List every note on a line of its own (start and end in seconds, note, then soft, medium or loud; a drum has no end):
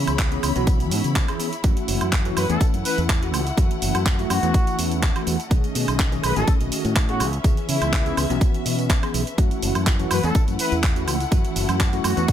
0.00 0.28 E3 medium
0.00 0.28 B3 medium
0.00 0.29 C#4 medium
0.00 5.47 E4 medium
0.00 0.29 G#4 medium
0.00 1.62 C#5 medium
0.00 1.62 B5 medium
0.07 0.37 C#2 medium
0.07 closed hi-hat soft
0.07 tambourine soft
0.07 high woodblock medium
0.19 kick loud
0.19 clap loud
0.19 closed hi-hat loud
0.19 tambourine soft
0.31 0.50 E3 medium
0.31 0.50 B3 medium
0.31 0.50 C#4 medium
0.31 0.51 G#4 loud
0.31 closed hi-hat soft
0.31 tambourine soft
0.43 0.52 C#2 medium
0.43 open hi-hat medium
0.43 tambourine medium
0.43 high woodblock medium
0.55 0.91 B1 loud
0.55 1.25 E3 medium
0.55 1.25 B3 medium
0.55 1.26 C#4 medium
0.55 1.26 F#4 medium
0.55 closed hi-hat soft
0.55 tambourine soft
0.67 kick loud
0.67 closed hi-hat loud
0.67 tambourine soft
0.80 closed hi-hat soft
0.80 tambourine soft
0.91 1.00 G#2 loud
0.91 open hi-hat loud
0.91 tambourine medium
1.04 1.28 C#3 medium
1.04 closed hi-hat soft
1.04 tambourine soft
1.16 kick loud
1.16 clap loud
1.16 closed hi-hat loud
1.16 tambourine soft
1.28 1.36 E2 medium
1.28 1.47 E3 medium
1.28 1.47 B3 medium
1.28 1.47 C#4 medium
1.28 1.47 G#4 medium
1.28 closed hi-hat soft
1.28 tambourine soft
1.28 high woodblock medium
1.40 open hi-hat medium
1.40 tambourine medium
1.53 closed hi-hat soft
1.53 tambourine soft
1.63 1.72 F#2 loud
1.63 2.22 E3 medium
1.63 7.16 A3 medium
1.63 2.22 A3 medium
1.63 2.22 C#4 medium
1.63 2.23 F#4 medium
1.63 5.47 F#5 medium
1.63 kick loud
1.63 closed hi-hat loud
1.63 tambourine soft
1.77 closed hi-hat soft
1.77 tambourine soft
1.88 1.97 F#1 loud
1.88 open hi-hat loud
1.88 tambourine medium
2.01 2.30 F#2 medium
2.01 closed hi-hat soft
2.01 tambourine soft
2.01 high woodblock medium
2.12 kick loud
2.12 clap loud
2.12 closed hi-hat loud
2.12 tambourine soft
2.25 2.44 E3 medium
2.25 2.44 A3 medium
2.25 2.44 C#4 medium
2.25 2.44 F#4 loud
2.25 closed hi-hat soft
2.25 tambourine soft
2.37 2.45 F#2 medium
2.37 2.47 B4 medium
2.37 open hi-hat medium
2.37 tambourine medium
2.37 high woodblock medium
2.48 2.57 E2 loud
2.48 3.18 E3 medium
2.48 3.19 A3 medium
2.48 3.19 C#4 medium
2.48 3.19 E4 medium
2.48 2.64 A4 medium
2.48 closed hi-hat soft
2.48 tambourine soft
2.61 kick loud
2.61 closed hi-hat loud
2.61 tambourine soft
2.74 2.81 F#2 medium
2.74 closed hi-hat soft
2.74 tambourine soft
2.85 3.00 B4 loud
2.85 open hi-hat loud
2.85 tambourine medium
2.98 3.33 E2 loud
2.98 closed hi-hat soft
2.98 tambourine soft
3.09 kick loud
3.09 clap loud
3.09 closed hi-hat loud
3.09 tambourine soft
3.22 3.40 E3 medium
3.22 3.41 A3 medium
3.22 3.41 C#4 medium
3.22 3.41 F#4 medium
3.22 closed hi-hat soft
3.22 tambourine soft
3.33 3.50 C#2 loud
3.33 open hi-hat medium
3.33 tambourine medium
3.33 high woodblock medium
3.47 closed hi-hat soft
3.47 tambourine soft
3.56 3.66 F#2 loud
3.56 4.15 E3 medium
3.56 4.15 A3 medium
3.56 4.16 C#4 medium
3.56 4.16 F#4 medium
3.56 kick loud
3.56 closed hi-hat loud
3.56 tambourine soft
3.71 closed hi-hat soft
3.71 tambourine soft
3.82 3.90 F#1 loud
3.82 open hi-hat loud
3.82 tambourine medium
3.95 4.24 F#2 medium
3.95 closed hi-hat soft
3.95 tambourine soft
3.95 high woodblock medium
4.06 kick loud
4.06 clap loud
4.06 closed hi-hat medium
4.06 tambourine soft
4.18 4.37 E3 medium
4.18 4.37 A3 medium
4.18 4.38 C#4 medium
4.18 4.38 F#4 loud
4.18 closed hi-hat soft
4.18 tambourine soft
4.30 4.39 F#2 medium
4.30 4.79 F#4 medium
4.30 open hi-hat loud
4.30 tambourine medium
4.30 high woodblock medium
4.42 4.50 E2 medium
4.42 5.12 E3 medium
4.42 5.12 A3 medium
4.42 5.13 C#4 medium
4.42 5.13 E4 medium
4.42 closed hi-hat soft
4.42 tambourine soft
4.54 kick loud
4.54 closed hi-hat loud
4.54 tambourine soft
4.67 closed hi-hat soft
4.67 tambourine soft
4.79 5.09 E2 medium
4.79 open hi-hat loud
4.79 tambourine medium
4.91 closed hi-hat soft
4.91 tambourine soft
5.03 kick loud
5.03 clap loud
5.03 closed hi-hat medium
5.03 tambourine soft
5.15 5.34 E3 medium
5.15 5.34 A3 medium
5.15 5.34 C#4 medium
5.15 5.35 F#4 medium
5.15 closed hi-hat soft
5.15 tambourine soft
5.15 high woodblock medium
5.27 5.35 E2 medium
5.27 open hi-hat loud
5.27 tambourine medium
5.40 closed hi-hat soft
5.40 tambourine soft
5.50 5.59 B1 loud
5.50 6.09 D#3 medium
5.50 6.09 A3 medium
5.50 9.34 C#4 medium
5.50 6.09 C#4 medium
5.50 7.19 G#4 medium
5.50 6.09 G#4 medium
5.50 7.19 D#5 medium
5.50 kick loud
5.50 closed hi-hat medium
5.50 tambourine soft
5.64 closed hi-hat soft
5.64 tambourine soft
5.75 5.84 B2 loud
5.75 open hi-hat loud
5.75 tambourine medium
5.88 6.18 B1 medium
5.88 closed hi-hat soft
5.88 tambourine soft
5.88 high woodblock medium
5.99 kick loud
5.99 clap loud
5.99 closed hi-hat medium
5.99 tambourine soft
6.12 6.31 D#3 medium
6.12 6.31 A3 medium
6.12 6.31 C#4 medium
6.12 6.31 G#4 loud
6.12 closed hi-hat soft
6.12 tambourine soft
6.24 6.32 B1 medium
6.24 6.34 B4 medium
6.24 open hi-hat loud
6.24 tambourine medium
6.24 high woodblock medium
6.36 6.44 A1 loud
6.36 7.05 D#3 medium
6.36 7.06 A3 medium
6.36 7.06 C#4 medium
6.36 7.06 F#4 medium
6.36 6.51 A4 loud
6.36 closed hi-hat soft
6.36 tambourine soft
6.48 kick loud
6.48 closed hi-hat medium
6.48 tambourine soft
6.61 6.68 B1 medium
6.61 closed hi-hat soft
6.61 tambourine soft
6.72 open hi-hat loud
6.72 tambourine medium
6.85 7.22 A2 loud
6.85 closed hi-hat soft
6.85 tambourine soft
6.96 kick loud
6.96 clap loud
6.96 closed hi-hat medium
6.96 tambourine soft
7.09 7.28 E3 medium
7.09 7.28 B3 medium
7.09 7.28 C#4 medium
7.09 7.25 F#4 medium
7.09 7.28 G#4 medium
7.09 closed hi-hat soft
7.09 tambourine soft
7.20 7.37 C#2 loud
7.20 9.36 B4 medium
7.20 9.36 E5 medium
7.20 open hi-hat loud
7.20 tambourine medium
7.20 high woodblock medium
7.33 closed hi-hat soft
7.33 tambourine soft
7.44 7.53 C#2 loud
7.44 8.02 E3 medium
7.44 8.02 B3 medium
7.44 8.03 C#4 medium
7.44 8.03 G#4 medium
7.44 kick loud
7.44 closed hi-hat medium
7.44 tambourine soft
7.57 closed hi-hat soft
7.57 tambourine soft
7.69 7.77 C#3 loud
7.69 8.17 E4 medium
7.69 open hi-hat loud
7.69 tambourine medium
7.81 8.11 C#2 medium
7.81 closed hi-hat soft
7.81 tambourine soft
7.81 high woodblock medium
7.93 kick loud
7.93 clap loud
7.93 closed hi-hat medium
7.93 tambourine soft
8.05 8.24 E3 medium
8.05 8.24 B3 medium
8.05 8.24 C#4 medium
8.05 8.25 G#4 loud
8.05 closed hi-hat soft
8.05 tambourine soft
8.17 8.26 C#2 medium
8.17 open hi-hat medium
8.17 tambourine medium
8.17 high woodblock medium
8.29 8.37 B1 loud
8.29 8.99 E3 medium
8.29 8.99 B3 medium
8.29 9.00 C#4 medium
8.29 9.00 F#4 medium
8.29 closed hi-hat soft
8.29 tambourine soft
8.41 kick loud
8.41 closed hi-hat medium
8.41 tambourine soft
8.54 closed hi-hat soft
8.54 tambourine soft
8.65 8.96 B2 medium
8.65 open hi-hat loud
8.65 tambourine medium
8.79 closed hi-hat soft
8.79 tambourine soft
8.90 kick loud
8.90 clap loud
8.90 closed hi-hat medium
8.90 tambourine soft
9.02 9.21 E3 medium
9.02 9.21 B3 medium
9.02 9.21 C#4 medium
9.02 9.21 G#4 medium
9.02 closed hi-hat soft
9.02 tambourine soft
9.02 high woodblock medium
9.14 9.22 B1 medium
9.14 open hi-hat loud
9.14 tambourine medium
9.27 closed hi-hat soft
9.27 tambourine soft
9.37 9.47 F#2 loud
9.37 9.96 E3 medium
9.37 9.96 A3 medium
9.37 12.32 A3 medium
9.37 9.96 C#4 medium
9.37 12.32 E4 medium
9.37 9.97 F#4 medium
9.37 12.32 F#5 medium
9.37 kick loud
9.37 closed hi-hat medium
9.37 tambourine soft
9.51 closed hi-hat soft
9.51 tambourine soft
9.62 9.71 F#1 loud
9.62 open hi-hat loud
9.62 tambourine medium
9.75 10.05 F#2 medium
9.75 closed hi-hat soft
9.75 tambourine soft
9.75 high woodblock medium
9.87 kick loud
9.87 clap loud
9.87 closed hi-hat medium
9.87 tambourine soft
9.99 10.18 E3 medium
9.99 10.18 A3 medium
9.99 10.18 C#4 medium
9.99 10.18 F#4 loud
9.99 closed hi-hat soft
9.99 tambourine soft
10.11 10.19 F#2 medium
10.11 10.21 B4 medium
10.11 open hi-hat medium
10.11 tambourine medium
10.11 high woodblock medium
10.23 10.31 E2 loud
10.23 10.93 E3 medium
10.23 10.93 A3 medium
10.23 10.93 C#4 medium
10.23 10.93 E4 medium
10.23 10.38 A4 medium
10.23 closed hi-hat soft
10.23 tambourine soft
10.35 kick loud
10.35 closed hi-hat medium
10.35 tambourine soft
10.48 10.55 F#2 medium
10.48 closed hi-hat soft
10.48 tambourine soft
10.59 10.75 B4 medium
10.59 open hi-hat loud
10.59 tambourine medium
10.72 11.07 E2 loud
10.72 closed hi-hat soft
10.72 tambourine soft
10.83 kick loud
10.83 clap loud
10.83 closed hi-hat medium
10.83 tambourine soft
10.96 11.15 E3 medium
10.96 11.15 A3 medium
10.96 11.15 C#4 medium
10.96 11.15 F#4 medium
10.96 closed hi-hat soft
10.96 tambourine soft
11.07 11.24 C#2 loud
11.07 open hi-hat loud
11.07 tambourine medium
11.07 high woodblock medium
11.20 closed hi-hat soft
11.20 tambourine soft
11.31 11.40 F#2 loud
11.31 11.89 E3 medium
11.31 11.90 A3 medium
11.31 11.90 C#4 medium
11.31 11.90 F#4 medium
11.31 kick loud
11.31 closed hi-hat medium
11.31 tambourine soft
11.45 closed hi-hat soft
11.45 tambourine soft
11.56 11.64 F#1 loud
11.56 open hi-hat loud
11.56 tambourine medium
11.69 11.98 F#2 medium
11.69 closed hi-hat soft
11.69 tambourine soft
11.69 high woodblock medium
11.80 kick loud
11.80 clap loud
11.80 closed hi-hat loud
11.80 tambourine soft
11.92 12.11 E3 medium
11.92 12.11 A3 medium
11.92 12.12 C#4 medium
11.92 12.12 F#4 loud
11.92 closed hi-hat soft
11.92 tambourine soft
12.04 12.13 F#2 medium
12.04 12.32 F#4 medium
12.04 open hi-hat medium
12.04 tambourine medium
12.04 high woodblock medium
12.16 12.25 E2 medium
12.16 12.32 E3 medium
12.16 12.32 A3 medium
12.16 12.32 C#4 medium
12.16 12.32 E4 medium
12.16 closed hi-hat soft
12.16 tambourine soft
12.28 kick loud
12.28 closed hi-hat medium
12.28 tambourine soft